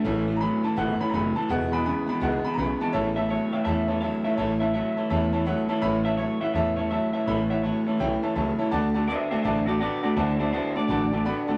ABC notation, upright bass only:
X:1
M:4/4
L:1/8
Q:"Swing" 1/4=166
K:A
V:1 name="Upright bass" clef=bass
A,,,3 z =G,,, z F,,, z | E,,,3 z C,, z B,,, z | A,,,3 z E,,3 z | A,,,3 z E,,3 z |
A,,,3 z E,,3 z | A,,,3 z B,,, z C,, z | D,,3 z A,,,3 z | D,,3 z A,,,3 z |]